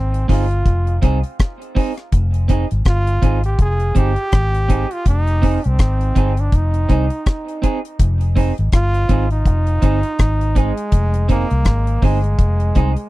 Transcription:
Already playing: fingered electric bass G#1, trombone C4
0.14 closed hi-hat
0.28 fingered electric bass G1, clean electric guitar C4 D#4 G#4, trombone F4, kick, open hi-hat
0.51 closed hi-hat
0.66 fingered electric bass F1, kick, closed hi-hat
0.87 closed hi-hat
1.02 fingered electric bass C2, clean electric guitar C4 D#4 G#4, kick, closed hi-hat
1.23 closed hi-hat
1.39 kick, cross-stick, closed hi-hat
1.62 closed hi-hat
1.75 clean electric guitar C4 D#4 G#4, kick, open hi-hat
1.98 cross-stick, closed hi-hat
2.12 fingered electric bass F1, kick, closed hi-hat
2.34 closed hi-hat
2.48 clean electric guitar C4 D#4 G#4, kick, closed hi-hat
2.71 fingered electric bass G#1, closed hi-hat
2.85 fingered electric bass G1, trombone F4, kick, cross-stick, closed hi-hat
3.07 closed hi-hat
3.22 fingered electric bass G#1, clean electric guitar C4 D#4 G#4, kick, closed hi-hat
3.43 trombone G4, closed hi-hat
3.59 fingered electric bass F1, trombone G#4, kick, closed hi-hat
3.80 closed hi-hat
3.95 fingered electric bass G1, clean electric guitar C4 D#4 G#4, trombone G4, kick, closed hi-hat
4.16 closed hi-hat
4.32 fingered electric bass G#1, kick, cross-stick, closed hi-hat
4.55 closed hi-hat
4.68 clean electric guitar C4 D#4 G#4, kick, closed hi-hat
4.91 trombone F4, closed hi-hat
5.06 fingered electric bass F1, trombone D#4, kick, closed hi-hat
5.27 closed hi-hat
5.42 clean electric guitar C4 D#4 G#4, kick, open hi-hat
5.64 fingered electric bass C2, trombone C4, closed hi-hat
5.79 fingered electric bass G#1, kick, cross-stick, closed hi-hat
6.01 closed hi-hat
6.15 fingered electric bass G1, clean electric guitar C4 D#4 G#4, kick, closed hi-hat
6.37 trombone D4, closed hi-hat
6.52 fingered electric bass F1, trombone D#4, kick, closed hi-hat
6.74 closed hi-hat
6.89 fingered electric bass C2, clean electric guitar C4 D#4 G#4, kick, closed hi-hat
7.10 closed hi-hat
7.26 kick, cross-stick, closed hi-hat
7.48 closed hi-hat
7.62 clean electric guitar C4 D#4 G#4, kick, closed hi-hat
7.85 closed hi-hat
7.99 fingered electric bass F1, kick, closed hi-hat
8.21 closed hi-hat
8.36 clean electric guitar C4 D#4 G#4, kick, open hi-hat
8.58 fingered electric bass G#1, closed hi-hat
8.72 fingered electric bass G1, trombone F4, kick, cross-stick, closed hi-hat
8.94 closed hi-hat
9.09 fingered electric bass G#1, clean electric guitar C4 D#4 G#4, kick, closed hi-hat
9.31 trombone D#4, closed hi-hat
9.46 fingered electric bass F1, kick, closed hi-hat
9.67 closed hi-hat
9.82 fingered electric bass G1, clean electric guitar C4 D#4 G#4, kick, closed hi-hat
10.03 closed hi-hat
10.19 fingered electric bass G#1, kick, cross-stick, closed hi-hat
10.41 closed hi-hat
10.55 trombone G#3, clean electric guitar C4 D#4 G#4, kick, closed hi-hat
10.77 closed hi-hat
10.92 fingered electric bass F1, kick, closed hi-hat
11.14 closed hi-hat
11.29 trombone A#3, clean electric guitar C4 D#4 G#4, kick, closed hi-hat
11.50 fingered electric bass C2, closed hi-hat
11.65 fingered electric bass G#1, kick, cross-stick, closed hi-hat
11.87 closed hi-hat
12.02 fingered electric bass G1, trombone G#3, clean electric guitar C4 D#4 G#4, kick, open hi-hat
12.24 closed hi-hat
12.39 fingered electric bass F1, kick, closed hi-hat
12.60 closed hi-hat
12.75 fingered electric bass C2, clean electric guitar C4 D#4 G#4, kick, closed hi-hat
12.96 closed hi-hat

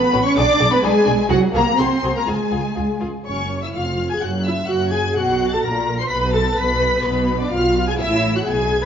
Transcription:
Already playing: cello section B3, viola section B4, violin section B5
0.13 double bass section A1, violin section C#4 F#4
0.24 cello section C#4, viola section C#5, violin section C#6
0.37 double bass section B1, cello section D4, violin section D4 G#4 D6, viola section D5
0.60 double bass section B1, violin section D4 G#4
0.71 cello section B3, viola section B4, violin section B5
0.83 double bass section B1, cello section G#3, violin section D4 G#4 G#5, viola section G#4
1.06 double bass section B1, violin section D4 G#4
1.29 double bass section C2, cello section F#3, violin section F#4 G#4 F#5, viola section F#4
1.53 double bass section C2, cello section A#3, violin section F#4 G#4 A#5, viola section A#4
1.78 double bass section C2, cello section C4, violin section F#4 G#4 C6, viola section C5
2.03 double bass section C2, violin section F#4 G#4
2.16 cello section A#3, viola section A#4, violin section A#5
2.27 double bass section C#2, cello section G#3, violin section F4 G#4 G#5, viola section G#4
2.51 double bass section C#2, violin section F4 G#4
2.76 double bass section C#2, violin section F4 G#4
3.00 double bass section C#2, violin section F4 G#4
3.25 double bass section F#1, cello section F#2, viola section C#4, violin section C#5 C#6
3.62 viola section E4, violin section E5 E6
3.73 double bass section F1, cello section F2, viola section F4, violin section F5 F6
4.09 viola section G#4, violin section G#5 G#6
4.20 double bass section F#1, cello section F#2, viola section F#4, violin section F#5 F#6
4.44 viola section E4, violin section E5 E6
4.68 double bass section F#1, cello section F#2, viola section F#4, violin section F#5 F#6
4.92 viola section G#4, violin section G#5 G#6
5.16 double bass section B1, cello section B2, viola section F#4, violin section F#5 F#6
5.52 viola section A4, violin section A5 A6
5.63 double bass section A#1, cello section A#2, viola section A#4, violin section A#5 A#6
5.99 viola section C5, violin section C6 C7
6.09 double bass section B1, cello section B2, viola section B4, violin section B5 B6
6.33 viola section A4, violin section A5 A6
6.57 double bass section B1, cello section B2, viola section B4, violin section B5 B6
7.04 double bass section B1, cello section B2, viola section B3, violin section B4 B5
7.40 viola section D4, violin section D5 D6
7.51 double bass section B1, cello section B2, viola section F4, violin section F5 F6
7.87 viola section G#4, violin section G#5 G#6
8.00 double bass section A1, cello section A2, viola section E4, violin section E5 E6
8.35 viola section F#4, violin section F#5 F#6
8.46 double bass section B1, cello section B2, viola section G#4, violin section G#5 G#6

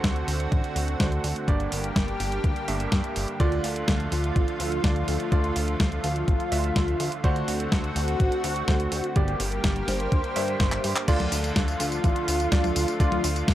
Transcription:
Already playing: electric grand piano D3 A3 D4 F#4 C5, analog synth pad D3 A3 C4 F#4
0.04 analog synth bass D2, kick, snare, closed hi-hat
0.16 closed hi-hat
0.28 analog synth bass D2, open hi-hat
0.40 closed hi-hat
0.52 analog synth bass A1, kick, closed hi-hat
0.64 closed hi-hat
0.76 analog synth bass D2, open hi-hat
0.88 closed hi-hat
1.00 analog synth bass D2, electric grand piano D3 A3 D4 F#4 C5, kick, snare, closed hi-hat
1.12 closed hi-hat
1.24 analog synth bass D2, open hi-hat
1.36 closed hi-hat
1.48 analog synth bass G1, electric grand piano G2 A#3 D4 G4 D5, analog synth pad G3 A#3 G4, kick, closed hi-hat
1.60 closed hi-hat
1.72 analog synth bass G1, open hi-hat
1.84 closed hi-hat
1.96 analog synth bass G1, kick, snare, closed hi-hat
2.08 closed hi-hat
2.20 analog synth bass G1, open hi-hat
2.32 closed hi-hat
2.44 analog synth bass D2, kick, closed hi-hat
2.56 closed hi-hat
2.68 analog synth bass G1, electric grand piano G2 A#3 D4 G4 E5, open hi-hat
2.80 closed hi-hat
2.92 analog synth bass G2, kick, snare, closed hi-hat
3.04 closed hi-hat
3.16 analog synth bass G1, open hi-hat
3.28 closed hi-hat
3.40 analog synth bass D2, electric grand piano D3 A3 D4 F4 D5, analog synth pad F3 A3 F4, analog synth lead F4, kick, closed hi-hat
3.52 closed hi-hat
3.64 analog synth bass D2, open hi-hat
3.76 closed hi-hat
3.88 analog synth bass D2, kick, snare, closed hi-hat
4.00 closed hi-hat
4.12 analog synth bass D2, analog synth lead F4, open hi-hat
4.24 closed hi-hat
4.36 analog synth bass A1, kick, closed hi-hat
4.48 closed hi-hat
4.60 analog synth bass D2, open hi-hat
4.72 closed hi-hat
4.84 analog synth bass D2, electric grand piano D3 A3 D4 F4 D5, kick, snare, closed hi-hat
4.96 closed hi-hat
5.08 analog synth bass D2, open hi-hat
5.20 closed hi-hat
5.32 analog synth bass D2, electric grand piano D3 A3 D4 F4 D5, analog synth lead F4, kick, closed hi-hat
5.44 closed hi-hat
5.56 analog synth bass D2, open hi-hat
5.68 closed hi-hat
5.80 analog synth bass D2, kick, snare, closed hi-hat
5.92 closed hi-hat
6.04 analog synth bass D2, analog synth lead F4, open hi-hat
6.16 closed hi-hat
6.28 analog synth bass A1, kick, closed hi-hat
6.40 closed hi-hat
6.52 analog synth bass D2, electric grand piano D3 A3 D4 F4 E5, open hi-hat
6.64 closed hi-hat
6.76 analog synth bass D2, kick, snare, closed hi-hat
6.88 closed hi-hat
7.00 analog synth bass D2, open hi-hat
7.12 closed hi-hat
7.24 analog synth bass D2, electric grand piano D3 A3 D4 F#4 C5, analog synth pad A3 C4 F#4, analog synth lead F#4, kick, closed hi-hat
7.36 closed hi-hat
7.48 analog synth bass D2, open hi-hat
7.60 closed hi-hat
7.72 analog synth bass D2, kick, snare, closed hi-hat
7.84 closed hi-hat
7.96 analog synth bass D2, analog synth lead F#4, open hi-hat
8.08 closed hi-hat
8.20 analog synth bass A1, kick, closed hi-hat
8.32 closed hi-hat
8.44 analog synth bass D2, open hi-hat
8.56 closed hi-hat
8.68 analog synth bass D2, electric grand piano D3 A3 D4 F#4 C5, kick, snare, closed hi-hat
8.80 closed hi-hat
8.92 analog synth bass D2, open hi-hat
9.04 closed hi-hat
9.16 analog synth bass G1, electric grand piano G2 A#3 D4 G4 D5, analog synth pad G3 A#3 G4, analog synth lead G4, kick, closed hi-hat
9.28 closed hi-hat
9.40 analog synth bass G1, open hi-hat
9.52 closed hi-hat
9.64 analog synth bass G1, kick, snare, closed hi-hat
9.76 closed hi-hat
9.88 analog synth bass G1, analog synth lead C5, snare, open hi-hat
10.00 closed hi-hat
10.12 analog synth bass D2, kick, closed hi-hat
10.24 closed hi-hat
10.36 electric grand piano G2 A#3 D4 G4 E5, analog synth bass G2, open hi-hat
10.48 closed hi-hat
10.60 analog synth bass G1, kick, snare, closed hi-hat
10.72 clap, closed hi-hat
10.84 analog synth bass G2, open hi-hat
10.96 clap
11.08 analog synth bass D2, electric grand piano D3 A3 D4 F4 D5, analog synth pad D3 F3 A3 F4, analog synth lead F4, kick, closed hi-hat, crash, tambourine
11.20 closed hi-hat, high tom
11.32 analog synth bass D2, open hi-hat, tambourine
11.44 closed hi-hat, tambourine
11.56 analog synth bass D2, kick, snare, closed hi-hat, tambourine
11.68 closed hi-hat, tambourine
11.80 analog synth bass D2, analog synth lead F4, open hi-hat, tambourine
11.92 closed hi-hat, tambourine
12.04 analog synth bass A1, kick, closed hi-hat, tambourine
12.16 closed hi-hat
12.28 analog synth bass D2, open hi-hat, tambourine
12.40 closed hi-hat, tambourine
12.52 analog synth bass D2, electric grand piano D3 A3 D4 F4 D5, kick, snare, closed hi-hat, tambourine
12.64 closed hi-hat, high tom, tambourine
12.76 analog synth bass D2, open hi-hat, tambourine
12.88 closed hi-hat, tambourine
13.00 analog synth bass D2, electric grand piano D3 A3 D4 F4 D5, analog synth lead F4, kick, closed hi-hat, tambourine
13.12 closed hi-hat, high tom
13.24 analog synth bass D2, open hi-hat, tambourine
13.36 closed hi-hat, tambourine
13.48 analog synth bass D2, kick, snare, closed hi-hat, tambourine

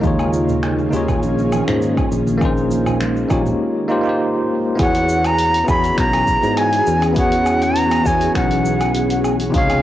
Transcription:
Already playing: ambient pad A#3
0.00 fretless electric bass D#2, ambient pad D#3 C#4 F4 G#4, tine electric piano A#3 D#4 F4, kick, muted conga, high conga, cabasa
0.05 tine electric piano G#4 C#5
0.19 cabasa, low woodblock
0.33 cabasa
0.49 muted conga, high conga, low conga, cabasa
0.63 finger snap, cabasa, low woodblock
0.79 muted conga, cabasa
0.89 fretless electric bass D#2, tine electric piano A#3 D#4 F4, high conga, cabasa
0.95 tine electric piano G#4 C#5
1.08 kick, low conga, cabasa, low woodblock
1.23 fretless electric bass A#1, muted conga, cabasa
1.39 cabasa
1.52 muted conga, high conga, cabasa, low woodblock
1.68 fretless electric bass G#2, finger snap, low conga, cabasa
1.82 cabasa
1.97 kick, muted conga, high conga, cabasa, low woodblock
2.12 fretless electric bass A#1, cabasa
2.27 muted conga, cabasa
2.37 ambient pad G#3, tine electric piano A#3 C#4 D#4, high conga, cabasa, low woodblock
2.42 ambient pad A#3, tine electric piano G#4 C5, kick
2.57 cabasa
2.71 muted conga, cabasa
2.86 high conga, low conga, cabasa, low woodblock
3.01 finger snap, muted conga, cabasa
3.16 cabasa
3.29 fretless electric bass A#1, tine electric piano A#3 D#4 F4 G4 C#5, kick, high conga, cabasa, low woodblock
3.46 muted conga, low conga, cabasa
3.88 tine electric piano A#3 D#4 F4 G4 C5
4.01 tine electric piano A#3 D#4 F4
4.07 tine electric piano G4 C5
4.75 fretless electric bass E2, ambient pad E3 B3 C#4 F#4 G#4, tine electric piano B3 E4 F#4, kick, open hi-hat, cabasa, low woodblock
4.81 tine electric piano G#4 C#5, flute F#5
4.95 open hi-hat, cabasa
5.09 cabasa
5.24 flute A#5, open hi-hat, cabasa, low woodblock
5.38 open hi-hat, cabasa
5.54 open hi-hat, cabasa
5.64 tine electric piano B3 E4 F#4, low woodblock
5.68 fretless electric bass E2, tine electric piano G#4 C#5, flute B5, kick, cabasa
5.84 open hi-hat, cabasa
5.98 fretless electric bass B1, flute A#5, finger snap, kick, open hi-hat, cabasa
6.13 open hi-hat, cabasa, low woodblock
6.27 kick, cabasa
6.43 fretless electric bass G#2, cabasa
6.57 flute G#5, open hi-hat, cabasa, low woodblock
6.73 open hi-hat, cabasa
6.87 fretless electric bass E2, cabasa
7.02 open hi-hat, cabasa, low woodblock
7.13 tine electric piano B3 E4 F#4, open hi-hat, cabasa
7.17 tine electric piano G#4 C#5, flute F#5, kick
7.32 open hi-hat, cabasa
7.46 cabasa, low woodblock
7.62 flute A#5, open hi-hat, cabasa
7.76 open hi-hat, cabasa
7.92 open hi-hat, cabasa, low woodblock
8.02 tine electric piano B3 E4 F#4
8.06 fretless electric bass E2, tine electric piano G#4 C#5, flute G#5, kick, cabasa
8.21 open hi-hat, cabasa
8.35 fretless electric bass B1, flute F#5, finger snap, kick, open hi-hat, cabasa, low woodblock
8.51 open hi-hat, cabasa
8.65 cabasa
8.81 open hi-hat, cabasa, low woodblock
8.95 open hi-hat, cabasa
9.10 open hi-hat, cabasa
9.24 cabasa, low woodblock
9.40 open hi-hat, cabasa
9.50 tine electric piano C3 D#4 F4, ambient pad C3 G#3 D#4, kick
9.54 fretless electric bass C#2, ambient pad F4, tine electric piano G#4 C#5, flute F5, open hi-hat, cabasa
9.70 open hi-hat, cabasa, low woodblock

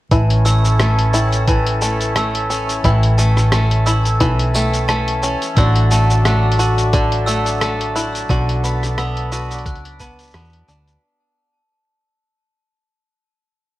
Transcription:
0.11 fingered electric bass A1, accordion E3, five-string banjo E3 E4, glockenspiel A5, kick, closed hi-hat, shaker
0.28 accordion C#4, closed hi-hat
0.45 five-string banjo A3, glockenspiel E6, shaker
0.65 shaker
0.71 accordion A4
0.80 five-string banjo A3, glockenspiel A5, cross-stick, closed hi-hat, shaker
0.99 closed hi-hat
1.14 five-string banjo E4, glockenspiel G5, shaker
1.32 closed hi-hat, shaker
1.45 five-string banjo E3, accordion E5, glockenspiel A5, kick, closed hi-hat, shaker
1.67 closed hi-hat
1.82 five-string banjo A3, glockenspiel A5, shaker
2.01 closed hi-hat, shaker
2.16 five-string banjo A3, glockenspiel E6, cross-stick, closed hi-hat, shaker
2.35 closed hi-hat
2.50 five-string banjo C#4, glockenspiel A5, shaker
2.69 closed hi-hat, shaker
2.84 fingered electric bass A1, five-string banjo E3 E4, glockenspiel G5, kick, closed hi-hat, shaker
3.03 closed hi-hat
3.18 five-string banjo A3, glockenspiel A5, shaker
3.37 cross-stick, shaker
3.52 five-string banjo A3, glockenspiel A5, cross-stick, closed hi-hat, shaker
3.71 closed hi-hat
3.86 five-string banjo E4, glockenspiel E6, shaker
4.05 closed hi-hat, shaker
4.20 fingered electric bass B1, five-string banjo E3, glockenspiel A5, kick, closed hi-hat, shaker
4.39 closed hi-hat
4.55 five-string banjo A3, glockenspiel G5, shaker
4.74 closed hi-hat, shaker
4.88 five-string banjo A3, glockenspiel A5, cross-stick, closed hi-hat, shaker
5.08 closed hi-hat
5.22 five-string banjo C#4, glockenspiel A5, shaker
5.42 closed hi-hat, shaker
5.56 fingered electric bass A1, five-string banjo D3 F#4, accordion F#3, glockenspiel E6, kick, closed hi-hat, shaker
5.76 closed hi-hat
5.91 five-string banjo A3, glockenspiel A5, shaker
6.10 accordion D4, shaker
6.25 five-string banjo A3, glockenspiel F#6, cross-stick, closed hi-hat, shaker
6.52 closed hi-hat
6.59 five-string banjo F#4, glockenspiel A5, shaker
6.78 closed hi-hat, shaker
6.93 five-string banjo D3, glockenspiel A5, kick, closed hi-hat, shaker
7.12 closed hi-hat
7.26 five-string banjo A3, glockenspiel E6, shaker
7.46 closed hi-hat, shaker
7.61 five-string banjo A3, glockenspiel A5, cross-stick, closed hi-hat, shaker
7.81 closed hi-hat
7.96 five-string banjo E4, glockenspiel F#6, shaker
8.15 closed hi-hat, shaker
8.29 fingered electric bass B1, five-string banjo D3 F#4, glockenspiel A5, kick, closed hi-hat, shaker
8.49 closed hi-hat
8.64 five-string banjo B3, glockenspiel A5, shaker
8.71 accordion B4
8.83 cross-stick, closed hi-hat, shaker
8.98 five-string banjo B3, glockenspiel E6, cross-stick, closed hi-hat, shaker
9.17 closed hi-hat
9.32 five-string banjo F#4, glockenspiel A5, shaker
9.51 accordion D5, closed hi-hat, shaker
9.59 closed hi-hat
9.66 fingered electric bass C#2, glockenspiel F#6, kick, closed hi-hat, shaker
9.75 closed hi-hat
9.85 closed hi-hat
10.00 five-string banjo B3, glockenspiel A5, kick, shaker
10.19 closed hi-hat, shaker
10.23 shaker
10.27 shaker
10.31 fingered electric bass E2, glockenspiel A5, cross-stick, closed hi-hat, shaker
10.34 five-string banjo B3, shaker
10.39 shaker
10.44 shaker
10.49 shaker
10.53 closed hi-hat
10.68 fingered electric bass D2, five-string banjo D4, glockenspiel A5, shaker
10.88 closed hi-hat, shaker

